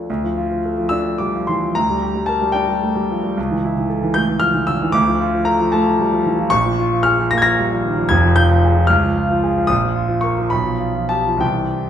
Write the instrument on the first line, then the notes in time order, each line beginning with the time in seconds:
grand piano
Already playing: D2 F3 D4 A4 D5 D6
0.10 D2
0.24 F3
0.37 F4
0.51 F3
0.65 A4
0.78 F3
0.89 D4 E6
1.05 F3
1.18 G3 D6
1.35 F3
1.47 E3 C6
1.64 F3
1.75 D2 A#5
1.90 G3
2.02 G4
2.16 G3
2.26 A#4 A5
2.42 G3
2.52 D4 G5
2.68 G3
2.82 A3
2.96 G3
3.11 F3
3.24 G3
3.37 C#2
3.51 E3
3.65 E4
3.78 E3
3.90 A4
4.03 E3
4.14 A3 G6
4.29 E3
4.40 F3 F6
4.54 E3
4.67 D3 E6
4.82 E3
4.92 D2 D6
5.07 F3
5.20 F4
5.35 F3
5.45 A4 A#5
5.60 F3
5.72 A3 A5
5.88 F3
5.99 G3
6.12 F3
6.26 E3
6.39 F3
6.50 A#1 C#6
6.66 F3
6.79 F4
6.93 F3
7.03 G#4 F6
7.18 F3
7.31 A#3 A#6
7.38 G#6
7.42 F3 A#6
7.59 G3
7.72 F3
7.85 D#3
7.97 F3
8.09 F1 F2 G#6
8.24 F3
8.36 F4 G6
8.51 F3
8.64 G#4
8.77 F3
8.87 C#2 F6
9.03 F3
9.16 F4
9.30 F3
9.43 G#4
9.57 F3
9.67 A#1 D#6
9.84 F3
9.96 F4
10.08 F3
10.21 A#4 C#6
10.39 F3
10.50 B1 B5
10.66 F3
10.80 F4
10.96 F3
11.09 G4 A5
11.27 F3
11.37 C2 E3 C4 G5
11.42 G4